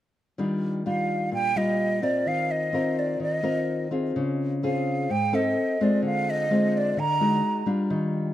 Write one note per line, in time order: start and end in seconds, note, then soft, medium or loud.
0.38 1.30 D#3 medium
0.38 0.82 G3 medium
0.38 0.82 D4 soft
0.38 0.82 F4 medium
0.86 1.52 G3 soft
0.86 1.53 D4 soft
0.86 1.52 F4 medium
0.86 1.30 F5 medium
1.32 2.23 A#2 medium
1.32 1.58 G5 loud
1.56 1.99 G3 medium
1.56 2.00 F4 medium
1.56 2.05 D#5 medium
2.02 2.69 C4 medium
2.02 2.69 F4 medium
2.02 2.70 A#4 medium
2.02 2.29 D5 medium
2.26 3.17 D#3 medium
2.26 2.53 F5 medium
2.51 3.00 D#5 medium
2.73 3.39 C4 medium
2.73 3.40 F4 medium
2.73 3.40 A#4 medium
2.99 3.21 D5 medium
3.20 4.11 D#3 medium
3.20 3.88 D#5 medium
3.43 3.86 C4 medium
3.43 3.86 F4 medium
3.43 3.87 A#4 medium
3.91 4.57 C4 medium
3.91 4.58 F4 medium
3.91 4.58 G#4 medium
4.16 5.06 C#3 medium
4.63 5.09 C4 medium
4.63 5.09 F4 medium
4.63 5.09 G#4 medium
4.63 5.12 F5 medium
5.10 5.53 G#2 medium
5.10 5.36 G5 medium
5.33 5.75 C4 medium
5.33 5.76 D#4 medium
5.33 5.75 A4 medium
5.33 5.84 D#5 medium
5.81 6.46 G#3 medium
5.81 6.46 C4 medium
5.81 6.46 F4 medium
5.81 6.04 D5 medium
6.02 6.94 D3 medium
6.02 6.31 F5 medium
6.30 6.79 D#5 medium
6.51 6.96 G#3 medium
6.51 6.97 C4 medium
6.51 6.97 F4 medium
6.77 7.01 D5 medium
6.97 7.41 D3 medium
6.97 7.68 A#5 loud
7.21 7.63 G#3 medium
7.21 7.63 D#4 medium
7.21 7.63 F#4 medium
7.66 8.33 G3 medium
7.66 8.33 D4 soft
7.66 8.33 F4 medium
7.90 8.34 D#3 medium